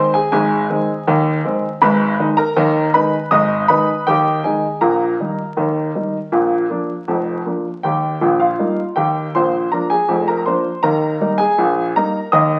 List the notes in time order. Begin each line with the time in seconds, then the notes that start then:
Already playing: D#3 G#3 C4 C5 C6
0.14 G#4 G#5
0.32 G#1 G#2 G#4 G#5
0.70 D#3 G#3 C4
1.07 D#2 D#3
1.45 D#3 G#3 C4
1.82 G#1 G#2 B4 B5
2.19 D#3 G#3 D#4
2.37 A#4 A#5
2.56 D#2 D#3
2.94 D#3 G#3 D#4 B4 B5
3.31 G#1 G#2 D#5 D#6
3.68 D#3 G#3 D#4 B4 B5
4.07 D#2 D#3 G4 G5
4.44 D#3 G#3 D#4 G#4 G#5
4.81 A#1 A#2 A#4 A#5
5.20 D#3 G3 D#4
5.57 D#2 D#3
5.95 D#3 G3 D#4
6.32 A#1 A#2
6.70 F3 A#3 D4
7.08 F1 F2
7.45 F3 A#3 D4
7.83 D#2 D#3 G4 G5
8.21 A#1 A#2
8.40 F4 F5
8.59 G3 A#3 D#4
8.96 D#2 D#3 G4 G5
9.35 A#1 A#2 C5 C6
9.72 F3 A#3 D4 A#4 A#5
9.90 G#4 G#5
10.08 F1 F2
10.28 A#4 A#5
10.46 F3 A#3 D4 C5 C6
10.83 D#2 D#3 A#4 A#5
11.21 G3 A#3 D#4
11.38 G#4 G#5
11.58 A#1 A#2
11.96 G3 A#3 D#4 A#4 A#5
12.32 D#2 D#3 D#5 D#6